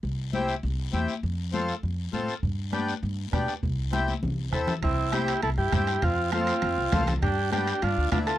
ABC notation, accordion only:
X:1
M:4/4
L:1/8
Q:1/4=200
K:C
V:1 name="Accordion"
z2 [CEG] z3 [CEG] z | z2 [CFA] z3 [CFA] z | z2 [B,DG] z3 [B,DG] z | z2 [CEG] z3 [CEA] z |
z2 [CEG] z3 [CEG] z | z2 [CFA] z3 [CFA] z | z2 [B,DG] z3 [B,DE] z |]